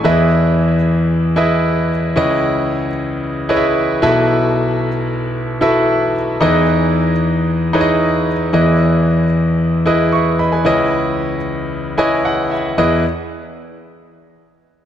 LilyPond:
<<
  \new Staff \with { instrumentName = "Grand piano" } { \time 4/4 \key e \major \tempo 4 = 113 << { r1 | r1 | r1 | r1 |
r2. <e'' cis'''>8 <dis'' b''>16 <b' gis''>16~ | <b' gis''>16 r2 r16 gis''8 fis''8 e''8 | r1 | } \\ { <e' gis' b' dis'' e''>4. r4 <e' gis' b' dis'' e''>4 r8 | <e' gis' b' cis'' dis''>4. r4 <e' gis' b' cis'' dis'' e''>4 <e' fis' a' b' e''>8~ | <e' fis' a' b' e''>4 r4. <e' fis' a' b' e''>4 r8 | <dis' e' gis' b' dis''>4. r4 <dis' e' gis' b' cis'' dis''>4 r8 |
<e' gis' b' dis''>4. r4 <e' gis' b' dis''>4 r8 | <e' b' cis'' dis''>4. r4 <e' b' cis'' dis''>4 r8 | <e' gis' b' dis''>8 r2. r8 | } >> }
  \new Staff \with { instrumentName = "Grand piano" } { \clef bass \time 4/4 \key e \major <e, e>1 | <cis, cis>2.~ <cis, cis>8 <b,, b,>8~ | <b,, b,>2.~ <b,, b,>8 r8 | <e, e>1 |
<e, e>1 | <cis, cis>1 | e,8 r2. r8 | }
>>